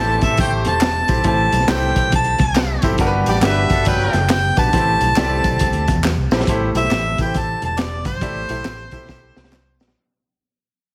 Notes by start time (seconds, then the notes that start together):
Already playing: A1 A2 A3 C4 E4 G4 A4 C5 A5
0.21 A1 E3 C4 A4 E5, kick, snare, closed hi-hat, tambourine
0.37 A3 G4 C5 G5, kick, closed hi-hat, tambourine, muted conga, low conga
0.65 E1 A5, snare, closed hi-hat, muted conga, low conga
0.81 snare, clap, closed hi-hat, tambourine, high conga
1.08 A#1 C4 E4 G4 A4 C5, kick, closed hi-hat, tambourine
1.18 high conga
1.24 A1 A2 C4 E4 G4 A4 C5 A5, kick, closed hi-hat, muted conga
1.52 B1, closed hi-hat, tambourine, muted conga
1.60 snare
1.68 C2 C4 E4 G4 A4 C5 G5, snare, clap, closed hi-hat, tambourine, high conga
1.95 B1, kick, closed hi-hat, tambourine, low conga
2.12 A5, kick, closed hi-hat, tambourine, muted conga, low conga
2.24 closed hi-hat
2.38 C2, kick, snare, closed hi-hat, muted conga
2.55 snare, clap, closed hi-hat, tambourine, high conga
2.82 G#1 C4 E4 G4 A4 C5, kick, closed hi-hat, tambourine
2.92 high conga
2.98 G1 G2 B3 D4 F#4 G4 A#4, kick, closed hi-hat, tambourine
3.07 B4
3.26 A1 B3 G4 D5, closed hi-hat, tambourine, muted conga
3.35 snare
3.42 G1 G3 B3 D4 F#4 G4 A#4 B4 E5, snare, clap, closed hi-hat, tambourine, high conga
3.49 B4
3.69 G1 A3 F#4 A4, kick, snare, closed hi-hat, tambourine
3.85 F#3 G3 B4 G5, kick, closed hi-hat, tambourine, muted conga, low conga
4.13 F#1, snare, closed hi-hat, tambourine, muted conga, low conga
4.29 G5, snare, clap, closed hi-hat, tambourine, high conga
4.57 A#1 B3 D4 F#4 G4 B4 A5, kick, closed hi-hat, tambourine
4.67 high conga
4.73 A1 A2 C4 E4 G4 A4 C5, kick, closed hi-hat, tambourine
5.01 B1, closed hi-hat, tambourine, muted conga
5.16 C2 C4 E4 G4 A4 D5, snare, clap, closed hi-hat, tambourine, high conga
5.44 B1, kick, closed hi-hat, tambourine, low conga
5.59 C2, kick, closed hi-hat, tambourine, muted conga, low conga
5.73 D2, closed hi-hat
5.88 kick, snare, closed hi-hat, tambourine, muted conga
5.96 E2
6.04 snare, clap, tambourine, high conga
6.18 C2
6.31 A#1 C4 E4 G4 A4 C5, snare, tambourine
6.40 snare, high conga
6.47 A1 A2 E4 G4 A4 C5, kick, closed hi-hat, tambourine, muted conga
6.75 B1 E4 G4 A4 C5 E5, closed hi-hat, tambourine, muted conga
6.84 snare
6.91 A1, snare, clap, closed hi-hat, tambourine, high conga
7.18 A1 E4 G4 A4 B4 G5, kick, closed hi-hat, tambourine
7.25 C5
7.34 A5, kick, closed hi-hat, tambourine, muted conga, low conga
7.62 E1 A5, closed hi-hat, muted conga, low conga
7.77 D5, snare, clap, closed hi-hat, tambourine, high conga
8.05 G1 C5, kick, closed hi-hat, tambourine
8.15 high conga
8.21 A1 A2 E4 G4 A4 D5, kick, closed hi-hat, tambourine
8.49 B1 E4 G4 A4 C5, closed hi-hat, tambourine, muted conga
8.65 A1, snare, clap, closed hi-hat, tambourine, high conga
8.91 B1 E4 G4 A4 C5, kick, closed hi-hat, tambourine, low conga
9.09 kick, snare, tambourine, muted conga, low conga
9.36 C2, snare, tambourine, muted conga
9.44 snare
9.52 snare, clap, tambourine, high conga
9.80 A#1, snare, tambourine
9.88 snare, high conga